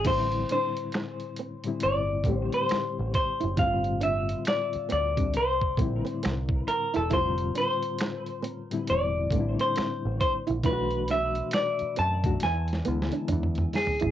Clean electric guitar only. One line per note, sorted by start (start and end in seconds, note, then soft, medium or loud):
0.07 0.51 C5 medium
0.52 1.83 C5 medium
1.83 2.38 D5 medium
2.38 2.54 C5 medium
2.54 3.14 C5 medium
3.15 3.59 C5 medium
3.59 4.03 F5 medium
4.03 4.44 E5 medium
4.48 4.91 D5 medium
4.92 5.37 D5 medium
5.37 6.28 C5 medium
6.28 6.67 A#4 medium
6.68 6.95 A#4 medium
6.96 7.13 A4 medium
7.13 7.57 C5 medium
7.58 8.41 C5 medium
8.41 8.85 B4 medium
8.90 9.61 D5 medium
9.61 10.20 C5 medium
10.21 10.33 C5 medium
10.66 11.10 B4 medium
11.11 11.54 E5 medium
11.55 11.98 D5 medium
11.99 12.43 A5 medium
12.43 13.70 G#5 medium
13.76 14.11 G#4 medium